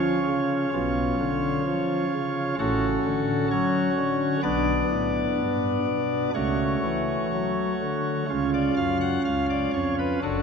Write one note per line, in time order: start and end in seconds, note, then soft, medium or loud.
0.00 0.19 F3 medium
0.00 0.69 C#4 soft
0.00 0.69 F4 soft
0.00 2.55 C#5 loud
0.26 0.66 C#3 medium
0.73 1.13 B1 medium
0.73 1.13 B2 medium
0.73 2.55 C#4 medium
0.73 2.55 F4 medium
1.20 1.59 D3 medium
1.66 2.05 F3 medium
2.14 2.53 C#3 medium
2.59 2.98 A1 medium
2.59 2.98 A2 medium
2.59 4.39 C#4 soft
2.59 4.39 F#4 medium
2.59 3.48 A4 loud
3.05 3.44 D3 medium
3.51 3.90 F#3 medium
3.51 4.41 C#5 loud
3.97 4.36 D3 medium
4.43 4.84 B1 medium
4.43 4.83 B2 medium
4.43 6.30 B3 medium
4.43 6.30 D4 soft
4.43 6.30 D5 loud
4.90 5.31 A2 medium
5.37 5.78 G2 medium
5.86 6.27 B2 medium
6.34 6.76 C#2 medium
6.34 6.76 C#3 medium
6.34 8.25 A3 soft
6.34 8.25 F#4 soft
6.34 8.49 C#5 medium
6.84 7.25 E3 medium
7.33 7.74 F#3 medium
7.81 8.22 D3 medium
8.29 8.70 C#2 medium
8.29 8.70 C#3 medium
8.29 10.19 C#4 soft
8.29 10.19 F4 soft
8.54 8.74 D5 medium
8.76 9.18 F#2 medium
8.76 8.97 F5 medium
9.01 9.21 F#5 medium
9.25 9.67 C#2 medium
9.25 9.46 F5 medium
9.50 9.70 D5 medium
9.74 10.15 F2 medium
9.74 9.95 C#5 medium
9.99 10.19 B4 medium
10.23 10.42 F#1 medium
10.23 10.42 F#2 medium
10.23 10.42 D4 soft
10.23 10.42 F#4 soft
10.23 10.42 A4 medium